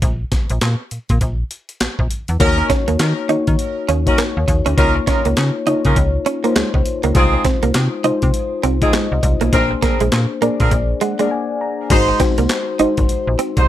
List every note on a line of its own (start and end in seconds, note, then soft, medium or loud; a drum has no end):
0.02 0.25 A#1 loud
0.02 kick loud
0.02 closed hi-hat medium
0.32 kick medium
0.32 snare medium
0.32 closed hi-hat medium
0.50 0.59 A#1 loud
0.50 closed hi-hat soft
0.61 0.76 A#2 loud
0.61 snare loud
0.61 clap medium
0.61 closed hi-hat medium
0.91 0.99 A#2 soft
0.91 closed hi-hat medium
1.09 1.19 A#2 medium
1.09 kick medium
1.09 closed hi-hat soft
1.21 1.44 A#1 loud
1.21 kick medium
1.21 closed hi-hat medium
1.51 closed hi-hat medium
1.69 closed hi-hat soft
1.80 1.88 A#1 medium
1.80 snare loud
1.80 clap medium
1.80 closed hi-hat medium
1.99 2.08 A#1 loud
1.99 kick medium
2.11 closed hi-hat medium
2.28 2.37 E2 medium
2.28 closed hi-hat medium
2.40 2.63 D#2 loud
2.40 3.18 A#3 medium
2.40 2.68 C#4 medium
2.40 3.18 D#4 medium
2.40 2.68 D#4 medium
2.40 2.68 F#4 medium
2.40 3.18 F#4 medium
2.40 2.68 A#4 loud
2.40 3.18 C#5 loud
2.40 kick loud
2.40 closed hi-hat medium
2.58 muted clean electric guitar stroke soft
2.70 2.82 C#4 medium
2.70 kick medium
2.70 snare medium
2.70 closed hi-hat medium
2.88 2.97 D#2 medium
2.88 2.96 A#3 medium
2.88 closed hi-hat medium
2.99 3.13 D#3 loud
2.99 snare loud
2.99 clap medium
2.99 closed hi-hat medium
3.29 3.37 D#3 soft
3.29 3.92 A#3 medium
3.29 3.92 D#4 medium
3.29 3.42 D#4 medium
3.29 3.92 F#4 medium
3.29 3.92 C#5 medium
3.29 closed hi-hat medium
3.47 3.56 D#3 medium
3.47 kick medium
3.47 closed hi-hat soft
3.59 closed hi-hat medium
3.89 4.11 D#2 medium
3.89 4.01 C#4 medium
3.89 closed hi-hat medium
4.06 4.68 A#3 medium
4.06 4.18 C#4 medium
4.06 4.68 D#4 medium
4.06 4.18 D#4 medium
4.06 4.18 F#4 medium
4.06 4.68 F#4 medium
4.06 4.18 A#4 medium
4.06 4.69 C#5 medium
4.06 kick medium
4.06 closed hi-hat soft
4.18 4.31 A#3 medium
4.18 snare loud
4.18 clap medium
4.18 closed hi-hat medium
4.37 4.45 D#2 medium
4.48 4.62 D#2 loud
4.48 muted clean electric guitar stroke soft
4.48 kick medium
4.48 closed hi-hat medium
4.66 4.75 D2 medium
4.66 4.74 C#4 medium
4.66 closed hi-hat medium
4.77 5.00 C#2 loud
4.77 5.55 A#3 medium
4.77 4.95 C#4 medium
4.77 5.55 D#4 medium
4.77 4.95 D#4 medium
4.77 4.95 F4 medium
4.77 5.56 F4 medium
4.77 4.95 A#4 loud
4.77 5.56 C#5 loud
4.77 kick loud
4.77 closed hi-hat medium
4.96 muted clean electric guitar stroke soft
5.07 5.25 C#4 medium
5.07 5.20 C#4 medium
5.07 5.25 D#4 medium
5.07 5.25 F4 medium
5.07 5.25 A#4 medium
5.07 kick medium
5.07 snare medium
5.07 closed hi-hat medium
5.25 5.35 C#2 medium
5.25 5.34 A#3 medium
5.25 closed hi-hat medium
5.37 5.51 C#3 loud
5.37 snare loud
5.37 clap medium
5.37 closed hi-hat medium
5.66 5.74 C#3 soft
5.66 6.29 A#3 medium
5.66 5.80 D#4 medium
5.66 6.30 D#4 medium
5.66 6.30 F4 medium
5.66 6.30 C#5 medium
5.66 closed hi-hat medium
5.85 5.94 C#3 medium
5.85 5.96 C#4 medium
5.85 5.96 D#4 medium
5.85 5.96 F4 medium
5.85 5.96 A#4 medium
5.85 kick medium
5.85 closed hi-hat soft
5.96 6.19 C#2 loud
5.96 muted clean electric guitar stroke soft
5.96 kick medium
5.96 closed hi-hat medium
6.26 6.39 C#4 medium
6.26 closed hi-hat medium
6.44 7.06 A#3 medium
6.44 6.52 A#3 medium
6.44 7.06 D#4 medium
6.44 7.06 F4 medium
6.44 7.06 C5 medium
6.44 closed hi-hat soft
6.56 6.63 C#2 soft
6.56 6.68 G#3 medium
6.56 snare loud
6.56 clap medium
6.56 closed hi-hat medium
6.74 6.83 C#2 medium
6.74 muted clean electric guitar stroke soft
6.74 kick medium
6.86 closed hi-hat medium
7.03 7.13 C#2 medium
7.03 7.12 A#3 medium
7.03 closed hi-hat medium
7.15 7.38 C2 loud
7.15 7.93 G#3 medium
7.15 7.43 C4 loud
7.15 7.43 D#4 medium
7.15 7.93 D#4 medium
7.15 7.43 F4 medium
7.15 7.93 F4 medium
7.15 7.43 G#4 loud
7.15 7.93 C5 medium
7.15 kick loud
7.15 closed hi-hat medium
7.33 muted clean electric guitar stroke soft
7.44 7.58 C4 medium
7.44 kick medium
7.44 snare medium
7.44 closed hi-hat medium
7.63 7.72 C2 medium
7.63 7.71 A#3 medium
7.63 closed hi-hat medium
7.74 7.88 C3 loud
7.74 snare loud
7.74 clap medium
7.74 closed hi-hat medium
8.04 8.12 C3 medium
8.04 8.67 G#3 medium
8.04 8.67 D#4 medium
8.04 8.17 D#4 medium
8.04 8.67 F4 medium
8.04 8.68 C5 medium
8.04 closed hi-hat medium
8.22 8.31 C3 medium
8.22 kick medium
8.22 closed hi-hat soft
8.34 closed hi-hat medium
8.63 8.86 C2 medium
8.63 8.76 C4 medium
8.63 closed hi-hat medium
8.82 9.43 G#3 medium
8.82 8.93 C4 medium
8.82 8.93 D#4 medium
8.82 9.44 D#4 medium
8.82 8.93 F4 medium
8.82 9.44 F4 medium
8.82 8.93 G#4 medium
8.82 9.44 D#5 medium
8.82 kick medium
8.82 closed hi-hat soft
8.93 9.06 G#3 medium
8.93 snare loud
8.93 clap medium
8.93 closed hi-hat medium
9.12 9.20 C2 medium
9.23 9.37 C2 loud
9.23 muted clean electric guitar stroke soft
9.23 kick medium
9.23 closed hi-hat medium
9.41 9.50 B1 medium
9.41 9.49 A#3 medium
9.41 closed hi-hat medium
9.53 9.75 A#1 loud
9.53 10.31 A#3 medium
9.53 9.70 C4 medium
9.53 10.31 D4 medium
9.53 9.70 D4 medium
9.53 9.70 G#4 medium
9.53 10.31 G#4 medium
9.53 9.71 A#4 loud
9.53 10.31 C5 medium
9.53 kick loud
9.53 closed hi-hat medium
9.71 muted clean electric guitar stroke soft
9.82 9.95 A#3 medium
9.82 10.00 C4 medium
9.82 10.00 D4 medium
9.82 10.00 G#4 medium
9.82 10.00 A#4 medium
9.82 kick medium
9.82 snare medium
9.82 closed hi-hat medium
10.00 10.10 A#1 medium
10.00 10.09 G#3 medium
10.00 closed hi-hat medium
10.12 10.26 A#2 loud
10.12 snare loud
10.12 clap medium
10.12 closed hi-hat medium
10.41 10.50 A#2 soft
10.41 11.05 A#3 medium
10.41 10.55 A#3 medium
10.41 11.05 D4 medium
10.41 11.05 G#4 medium
10.41 11.05 D5 medium
10.41 closed hi-hat medium
10.60 10.69 A#2 medium
10.60 10.71 C4 medium
10.60 10.71 D4 medium
10.60 10.71 G#4 medium
10.60 10.71 A#4 medium
10.60 kick medium
10.60 closed hi-hat soft
10.71 10.94 A#1 loud
10.71 muted clean electric guitar stroke soft
10.71 kick medium
10.71 closed hi-hat medium
11.01 11.14 G#3 medium
11.01 11.29 F#5 medium
11.01 closed hi-hat medium
11.19 11.28 G#3 medium
11.19 11.81 A#3 medium
11.19 11.81 D4 medium
11.19 11.81 G#4 medium
11.19 11.82 D5 loud
11.19 closed hi-hat soft
11.31 11.59 G#5 medium
11.61 11.89 A#5 medium
11.90 12.13 G#1 loud
11.90 12.16 G#3 medium
11.90 12.18 D#4 loud
11.90 12.17 D#4 medium
11.90 12.18 F#4 medium
11.90 12.17 F#4 medium
11.90 12.18 G#4 medium
11.90 12.18 C5 loud
11.90 12.17 C5 medium
11.90 kick loud
11.90 closed hi-hat medium
11.90 crash medium
12.09 muted clean electric guitar stroke soft
12.20 12.72 G#3 medium
12.20 12.33 C4 medium
12.20 12.72 D#4 medium
12.20 12.72 F#4 medium
12.20 12.72 C5 medium
12.20 kick medium
12.20 snare medium
12.20 closed hi-hat medium
12.38 12.47 C2 medium
12.38 12.46 A#3 medium
12.38 closed hi-hat medium
12.49 snare loud
12.49 clap medium
12.49 closed hi-hat medium
12.79 12.87 G#1 soft
12.79 13.68 G#3 medium
12.79 12.92 D#4 medium
12.79 13.68 D#4 medium
12.79 13.68 F#4 medium
12.79 13.68 C5 loud
12.79 closed hi-hat medium
12.97 13.07 G#1 medium
12.97 kick medium
12.97 closed hi-hat soft
13.09 closed hi-hat medium
13.27 13.36 A#1 loud
13.39 13.52 C4 medium
13.39 closed hi-hat medium
13.57 13.66 C2 medium
13.57 13.68 D#4 medium
13.57 13.68 F#4 medium
13.57 13.68 G#4 medium
13.57 13.68 C5 medium
13.57 kick loud
13.57 closed hi-hat medium